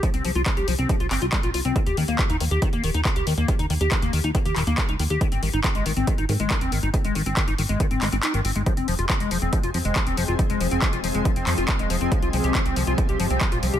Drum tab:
HH |xxoxxxoxxxoxxxox|xxoxxxoxxxoxxxox|xxoxxxoxxxoxxxox|xxoxxxoxxxoxxxox|
CP |----x-----x-x---|----x-------x---|----x-----x-x---|----x-------x---|
BD |o---o---o---o---|o---o---o---o---|o---o---o---o---|o---o---o---o---|

HH |xxoxxxoxxxoxxxox|xxoxxxoxxxoxxxox|xxoxxxoxxxoxxxox|xxoxxxoxxxoxxxox|
CP |----x-----x-x---|----x-------x---|----x-----x-x---|----x-------x---|
BD |o---o---o-------|o---o---o---o---|o---o---o---o---|o---o---o---o---|